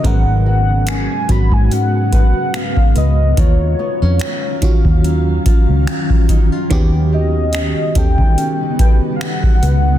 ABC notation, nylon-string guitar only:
X:1
M:4/4
L:1/16
Q:"Swing 16ths" 1/4=72
K:Ebm
V:1 name="Nylon-string guitar"
[A,c]2 G2 D2 G2 D2 c2 G2 c2 | [E,F]2 C D G,2 D2 G,2 F2 D2 E F | [E,=B]2 =G2 D2 G2 D2 B2 G2 B2 |]